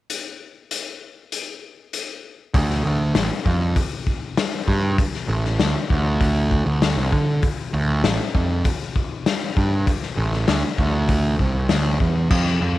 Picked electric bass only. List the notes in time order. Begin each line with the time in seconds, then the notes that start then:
2.54 D2
2.85 D2
3.15 A1
3.45 F2
4.68 G2
5.28 A1
5.60 D2
5.90 D2
6.66 D2
6.96 C2
7.12 D3
7.73 D2
8.04 A1
8.35 F2
9.57 G2
10.17 A1
10.48 D2
10.78 D2
11.40 C2
11.70 D2
12.00 E2
12.31 F2
12.62 F2